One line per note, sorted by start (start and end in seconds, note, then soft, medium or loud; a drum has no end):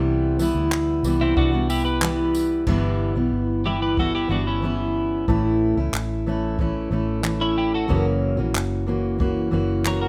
0.00 0.51 C2 loud
0.00 0.39 C3 medium
0.00 0.39 E3 medium
0.00 0.39 G3 medium
0.00 0.40 B3 medium
0.00 0.41 E4 medium
0.39 1.04 E3 medium
0.39 1.05 G3 medium
0.39 1.06 B3 medium
0.39 1.07 E4 medium
0.39 tambourine medium
0.55 1.00 D2 medium
0.72 clap loud
1.03 1.33 C2 loud
1.03 1.53 E3 medium
1.03 1.53 G3 medium
1.03 1.52 B3 medium
1.03 tambourine medium
1.07 1.51 E4 medium
1.21 1.37 C4 medium
1.21 1.36 E4 medium
1.37 2.63 C2 loud
1.37 1.68 D4 medium
1.37 1.68 F#4 medium
1.37 kick loud
1.52 2.02 G3 soft
1.52 2.02 B3 soft
1.52 2.01 E4 medium
1.70 1.84 E4 medium
1.70 1.84 G4 medium
1.70 tambourine medium
1.85 2.63 G4 medium
1.85 2.63 B4 medium
2.01 2.67 E3 medium
2.01 2.68 G3 medium
2.01 2.68 B3 medium
2.01 2.68 E4 medium
2.01 clap loud
2.35 tambourine medium
2.67 3.12 G1 medium
2.67 3.16 G2 medium
2.67 3.16 D3 medium
2.67 3.16 E3 medium
2.67 3.16 G3 medium
2.67 3.15 B3 medium
2.67 3.14 E4 medium
2.67 kick medium
2.67 crash medium
3.15 3.31 B1 medium
3.15 3.63 E3 soft
3.15 3.64 G3 soft
3.15 3.65 B3 soft
3.15 3.65 E4 soft
3.31 4.26 G1 medium
3.64 3.97 E3 medium
3.64 3.97 G3 medium
3.64 3.98 B3 medium
3.64 3.98 E4 medium
3.64 3.81 E4 medium
3.64 3.81 G4 medium
3.82 3.97 G4 medium
3.82 3.97 B4 medium
3.97 4.28 E3 medium
3.97 4.29 G3 medium
3.97 4.30 B3 medium
3.97 4.30 E4 medium
3.97 4.14 F#4 medium
3.97 4.14 A4 medium
3.97 kick medium
4.15 4.30 E4 medium
4.15 4.30 G4 medium
4.29 5.24 G1 medium
4.29 4.61 E3 medium
4.29 4.62 G3 medium
4.29 4.63 B3 medium
4.29 4.47 D4 medium
4.29 4.64 E4 medium
4.29 4.46 F#4 medium
4.47 5.25 C#4 medium
4.47 5.25 E4 medium
4.62 5.28 E3 medium
4.62 5.28 G3 medium
4.62 5.29 B3 medium
4.62 5.29 E4 medium
5.28 5.73 A1 medium
5.28 5.77 A2 medium
5.28 5.77 E3 medium
5.28 5.77 A3 medium
5.28 5.77 C#4 medium
5.28 5.76 E4 medium
5.28 kick medium
5.77 5.92 C#2 medium
5.77 6.26 A3 soft
5.77 6.26 C#4 soft
5.77 6.26 E4 medium
5.93 6.87 A1 medium
5.93 clap loud
6.26 6.58 E3 medium
6.26 6.59 A3 medium
6.26 6.60 C#4 medium
6.26 6.60 E4 medium
6.59 6.90 E3 medium
6.59 6.91 A3 medium
6.59 6.91 C#4 medium
6.59 6.92 E4 medium
6.59 kick medium
6.91 7.85 A1 medium
6.91 7.21 E3 medium
6.91 7.22 A3 medium
6.91 7.23 C#4 medium
6.91 7.24 E4 medium
7.23 7.89 E3 medium
7.23 7.89 A3 medium
7.23 7.89 C#4 medium
7.23 7.90 E4 medium
7.23 clap loud
7.41 7.57 C#4 medium
7.41 7.57 E4 medium
7.58 7.73 E4 medium
7.58 7.73 G4 medium
7.74 8.05 F#4 medium
7.74 8.05 A4 medium
7.88 8.35 F#1 medium
7.88 8.38 F#2 medium
7.88 8.38 C#3 medium
7.88 8.38 E3 medium
7.88 8.37 A#3 medium
7.88 8.37 C#4 medium
7.88 8.36 F#4 medium
7.88 kick medium
8.37 8.53 A#1 medium
8.37 8.85 E3 soft
8.37 8.86 A#3 soft
8.37 8.87 C#4 soft
8.37 8.87 F#4 medium
8.55 9.49 F#1 medium
8.55 clap loud
8.87 9.17 E3 medium
8.87 9.19 A#3 medium
8.87 9.19 C#4 medium
8.87 9.20 F#4 medium
9.19 9.50 E3 medium
9.19 9.51 A#3 medium
9.19 9.52 C#4 medium
9.19 9.52 F#4 medium
9.19 kick loud
9.51 10.08 F#1 medium
9.51 9.84 E3 medium
9.51 9.85 A#3 medium
9.51 9.86 C#4 medium
9.51 9.86 F#4 medium
9.85 10.08 E3 medium
9.85 10.08 A#3 medium
9.85 10.08 C#4 medium
9.85 10.08 F#4 medium
9.85 10.00 A#4 medium
9.85 10.01 C#5 medium
9.85 clap loud
10.01 10.08 F#4 medium
10.01 10.08 A#4 medium